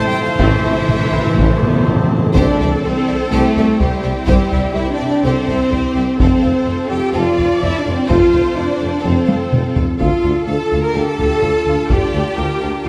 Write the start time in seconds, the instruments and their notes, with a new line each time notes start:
Already playing: french horn section A3 A4, string section A3 E4 C5 A5, trumpet C5
0.06 timpani A2, cello section G3, violin section G4 G5, flute G5
0.12 timpani A2, taiko rim
0.21 timpani A2, cello section F3, flute F5, violin section F5
0.25 timpani A2, violin section F4
0.35 timpani A2, cello section E3, flute E5, violin section E5
0.39 double bass section A1, tuba A1, timpani A2, viola section A3 C4, violin section E4, taiko
0.51 timpani A2
0.59 timpani A2
0.64 double bass section A1, tuba A1, timpani A2, viola section A3 C4
0.74 timpani A2
0.82 timpani A2
0.89 double bass section A1, tuba A1, timpani A2, viola section E3, taiko mid
0.96 timpani A2
1.05 timpani A2
1.11 double bass section A1, tuba A1, timpani A2, taiko rim
1.18 timpani A2
1.27 timpani A2
1.34 double bass section A1, tuba A1, timpani A2, taiko
1.43 timpani A2
1.50 timpani A2
1.58 timpani A2
1.63 timpani A2, viola section B3, taiko mid
1.73 timpani A2
1.80 timpani A2
1.87 tuba A1, double bass section A1, timpani A2, viola section C4, taiko mid
1.96 timpani A2
2.04 timpani A2
2.11 timpani A2
2.18 timpani A2
2.26 timpani A2
2.34 tuba C2, double bass section C2, string section C4 E4 C5 G5, cello section D4, french horn section D4, violin section G4 C5 D5, viola section A4, taiko
2.60 double bass section C2, tuba C2, violin section D5 E5, taiko low
2.82 tuba C2, double bass section C2, french horn section C4, cello section C4, violin section C5 D5
3.07 tuba C2, double bass section C2, violin section D5 E5
3.30 double bass section C2, tuba C2, french horn section A3, cello section A3, violin section G4 A4 C5
3.56 tuba C2, double bass section C2, violin section D5 E5, taiko low
3.80 tuba C2, double bass section C2, french horn section G3, cello section G3, viola section G4, violin section G4 C5 D5, taiko low
4.03 double bass section C2, tuba C2, violin section D5 E5
4.27 double bass section C2, tuba C2, french horn section G3, cello section G3, viola section E4, violin section G4 C5, taiko
4.52 tuba C2, double bass section C2, violin section D5 E5, taiko low
4.74 tuba C2, double bass section C2, french horn section E4, cello section E4, viola section G4, violin section C5 D5 E5
4.90 french horn section D4, cello section D4, violin section D5
4.99 double bass section C2, tuba C2, violin section D5 E5
5.06 french horn section D4, cello section D4, violin section D5
5.23 tuba C2, double bass section C2, french horn section C4, cello section C4, violin section G4 C5, viola section A4
5.47 double bass section C2, tuba C2, violin section D5 E5, taiko low
5.70 tuba C2, double bass section C2, viola section G4, violin section C5 D5, taiko low
5.95 double bass section C2, tuba C2, violin section D5 E5
6.18 tuba F1, double bass section F2, string section C4 F4 A4 A5, cello section C4, violin section C4 A4 C5, french horn section C4, viola section A4, taiko
6.42 tuba F1, double bass section F2, violin section A4 F5, taiko low
6.64 tuba F1, double bass section F2, violin section F4 C5
6.90 tuba F1, double bass section F2, french horn section G4, cello section G4, violin section A4 F5 G5
7.14 tuba F1, double bass section F2, violin section C4 A4 F5, cello section F4, french horn section F4, viola section D5
7.37 tuba F1, double bass section F2, violin section A4 F5, taiko low
7.60 tuba F1, double bass section F2, cello section E4, french horn section E4, violin section F4 C5 E5, taiko low
7.77 cello section D4, french horn section D4, violin section D5
7.84 tuba F1, double bass section F2, violin section A4 F5
7.93 cello section C4, french horn section C4, violin section C5
8.07 tuba F1, double bass section F2, violin section C4 A4 F5, french horn section F4, cello section F4, viola section C5, taiko
8.30 tuba F1, double bass section F2, violin section A4 F5, taiko low
8.55 tuba F1, double bass section F2, cello section D4, french horn section D4, violin section F4 C5 D5
8.79 tuba F1, double bass section F2, violin section A4 F5
9.01 tuba F1, double bass section F2, violin section C4 A4 C5, cello section C4, viola section A4
9.05 french horn section C4
9.26 tuba F1, double bass section F2, violin section A4 F5, taiko high
9.51 tuba F1, double bass section F2, violin section F4 C5, taiko mid
9.75 tuba F1, double bass section F2, violin section A4 F5, taiko low
9.99 tuba D2, double bass section D2, string section D4 F4 A5, cello section F4, french horn section F4, violin section A4 F5, viola section A4, taiko
10.23 tuba D2, double bass section D2, violin section A4 F5, taiko low
10.47 double bass section D2, tuba D2, violin section A4 F5 A5, cello section A4, french horn section A4
10.71 tuba D2, double bass section D2, violin section A4 F5
10.81 cello section A#4, violin section A#5
10.85 french horn section A#4
10.94 double bass section D2, tuba D2, viola section G4, cello section A4, violin section A4 F5 A5, french horn section A4
11.18 tuba D2, double bass section D2, violin section A4 F5, taiko low
11.42 tuba D2, double bass section D2, viola section F4, violin section A4 F5, taiko low
11.66 tuba D2, double bass section D2, violin section A4 F5
11.89 tuba D2, double bass section D2, cello section G4, french horn section G4, violin section A4 F5 G5, viola section D5, taiko
12.13 tuba D2, double bass section D2, violin section A4 F5
12.36 tuba D2, double bass section D2, violin section A4 F5, viola section A#4
12.61 tuba D2, double bass section D2, violin section A4 F5
12.84 tuba D2, cello section F4, french horn section F4, violin section A4 F5, viola section A4